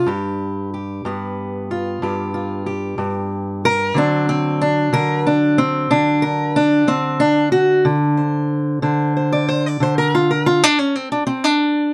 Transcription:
0.06 G2 G4
0.74 G4
1.05 G2 B3
1.71 F4
2.02 G2 G4
2.34 F4
2.66 G4
2.98 G2
3.65 A#4
3.94 D3 F#3 C4 D4
4.29 C4
4.61 D4
4.93 D3 A#4
5.27 D4
5.58 C4
5.91 D3 D4
6.22 A#4
6.56 D4
6.87 D3 C4
7.20 D4
7.52 F#4
7.85 D3
8.17 C5
8.82 D3 C5
9.17 C5
9.32 D5
9.49 C5
9.66 D5
9.80 D3 C5
9.98 A#4
10.15 F4
10.31 A#4
10.46 F4
10.64 D4
10.79 C#4
10.95 C4
11.12 D4
11.27 C4
11.44 D4

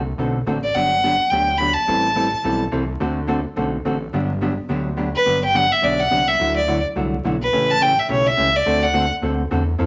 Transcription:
Already playing: C2
0.18 B1 D3 A3 C4 F#4 A4
0.46 A1 D3 A3 C4 F#4 A4
0.63 D5
0.75 G1 D3 F#3 B3 D4 G4 F#5
1.03 D3 F#3 B3 D4 G4
1.30 D2 D3 F#3 B3 D4 G4 G5
1.58 D3 F#3 B3 D4 G4 B5
1.74 A5
1.88 A1 E3 G3 C4 E4 A4
2.15 E3 G3 C4 E4 A4
2.44 B1 E3 G3 C4 E4 A4
2.72 C2 E3 G3 C4 E4 A4
3.00 D2 D3 A3 C4 F#4 A4
3.27 D3 A3 C4 F#4 A4
3.56 B1 D3 A3 C4 F#4 A4
3.85 A1 D3 A3 C4 F#4 A4
4.13 G1 D3 F#3 B3 D4 G4
4.41 D3 F#3 B3 D4 G4
4.69 D2 D3 F#3 B3 D4 G4
4.97 D3 F#3 B3 D4 G4
5.16 B4
5.26 G1 D3 F#3 B3 D4 G4
5.45 G5
5.54 D3 F#3 B3 D4 G4 F#5
5.72 E5
5.82 B1 D3 F#3 B3 D4 G4 D5
6.00 F#5
6.10 C2 D3 F#3 B3 D4 G4
6.28 E5
6.39 D2 D3 F#3 A3 E4 F#4
6.56 D5
6.68 D3 F#3 A3 E4 F#4
6.96 C2 D3 F#3 A3 E4 F#4
7.24 B1 D3 F#3 A3 E4 F#4
7.42 B4
7.53 A1 C#3 E3 A3 C#4 G4
7.71 A5
7.81 C#3 E3 A3 C#4 G4 G5
7.99 E5
8.08 B1 C#3 E3 A3 C#4 G4 C#5
8.27 E5
8.37 C#2 C#3 E3 A3 C#4 G4
8.56 D5
8.66 D2 D3 A3 C4 F#4 A4
8.83 F#5
8.94 D3 A3 C4 F#4 A4
9.22 D2 D3 A3 C4 F#4 A4
9.51 E2 D3 A3 C4 F#4 A4
9.78 F2 F3 C4 E4 A4

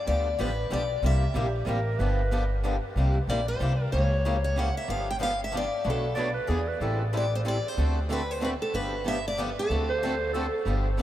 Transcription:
0.07 D2 D3 F3 B3 D4 G4 D5
0.39 A1 D3 F3 B3 D4 G4 B4
0.70 B1 D3 F3 B3 D4 G4 D5
1.02 C2 C3 G3 A#3 E4 G4 E5
1.34 A#1 C3 G3 A#3 E4 G4
1.65 A1 C3 G3 A#3 E4 G4 A#4
1.99 G1 D3 F3 B3 D4 G4 B4
2.31 D3 F3 B3 D4 G4
2.63 D3 F3 B3 D4 G4
2.96 C2 C3 G3 A#3 E4 G4
3.27 A#1 C3 G3 A#3 E4 G4 D5
3.48 C5
3.59 C2 C3 G3 A#3 E4 G4
3.92 C#2 C#3 E3 G3 A#3 C#4 E4 G4 C#5
4.25 C#3 E3 G3 A#3 C#4 E4 G4
4.44 C#5
4.56 C#3 E3 G3 A#3 C#4 E4 G4 F#5
4.77 E5
4.87 G1 D3 F3 B3 D4 G4 F5
5.11 G5
5.20 D3 F3 B3 D4 G4 F5
5.44 E5
5.54 D3 F3 B3 D4 G4 D5
5.84 B1 B2 F#3 A3 D4 F#4 B4
5.90 A4
6.15 B2 F#3 A3 D4 D5
6.19 F#4 B4
6.34 B4
6.49 E2 E3 B3 D4 G#4 B4
6.68 B4
6.80 A1 E3 G3 C4 E4 A4
7.13 E3 G3 C4 E4 A4
7.17 D5
7.35 C5
7.45 E3 G3 C4 E4 A4 D5
7.68 C5
7.77 D2 D3 A3 C4 F#4 A4
8.09 D3 A3 C4 F#4 A4 B4
8.31 C5
8.40 D3 A3 C4 F#4 A4
8.45 B4
8.62 A4
8.73 G1 D3 F3 B3 D4 G4 B4
9.04 D3 F3 B3 D4 G4 E5
9.28 D5
9.39 D3 F3 B3 D4 G4 B4
9.59 A4
9.70 D2 D3 A3 C4 F#4 A4
9.89 C5
10.04 D3 A3 C4 F#4 A4
10.33 D3 A3 C4 F#4 A4
10.65 G1 D3 F3 B3 D4 G4
10.97 D3 F3 B3 D4 G4

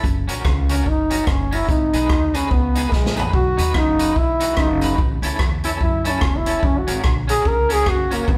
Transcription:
0.04 F#1, kick, hi-hat pedal
0.28 A#1 C#4 F#4 A#4, closed hi-hat, tambourine
0.45 C#2, kick, cross-stick
0.69 C#4 F#4 A#4, closed hi-hat, tambourine
0.86 F#1 D#4, kick
1.10 C#4 F#4 A#4, closed hi-hat, tambourine
1.27 F#1 C#4, kick, cross-stick
1.51 C#4 E4 F#4 A#4, open hi-hat, tambourine
1.69 G#1 D#4, kick, hi-hat pedal
1.93 B1 D#4 G#4 B4, closed hi-hat, tambourine
2.09 D#2, kick, cross-stick
2.34 C#4 D#4 G#4 B4, closed hi-hat, tambourine
2.51 C#2 B3, kick
2.75 D#4 G#4 B4, closed hi-hat, tambourine
2.92 A#1 G#3, kick, snare
3.06 snare
3.16 D#4 G#4 B4, floor tom, tambourine
3.33 B1 F#4, kick
3.57 D#2 D#4 F#4 B4, closed hi-hat, tambourine
3.74 F#1 D#4, kick, cross-stick
3.99 D#4 F#4 B4, closed hi-hat, tambourine
4.16 B1 E4, kick
4.40 D#4 F#4 B4, closed hi-hat, tambourine
4.57 F#1 D#4, kick, cross-stick
4.81 D#4 F#4 B4, closed hi-hat, tambourine
4.98 A1, kick
5.22 C#2 C#4 E4 A4, closed hi-hat, tambourine
5.39 E2, kick, cross-stick
5.64 C#4 E4 A4, closed hi-hat, tambourine
5.81 F#2 E4, kick
6.05 C#4 E4 A4, closed hi-hat, tambourine
6.10 C#4
6.21 E1, kick, cross-stick
6.37 E4
6.46 C#4 E4 A4, closed hi-hat, tambourine
6.63 F#1 C#4, kick
6.78 F#4
6.87 G#1 C#4 F#4 A#4, closed hi-hat, tambourine
7.04 A#1, kick, cross-stick
7.27 C#4 F#4 G#4 A#4, closed hi-hat, tambourine
7.45 C#2 A#4, kick
7.69 C#4 F#4 G#4 A#4, closed hi-hat, tambourine
7.86 F#1 F#4, kick, cross-stick
8.11 A#3 C#4 F#4 A#4, closed hi-hat, tambourine
8.28 G#1 B3, kick

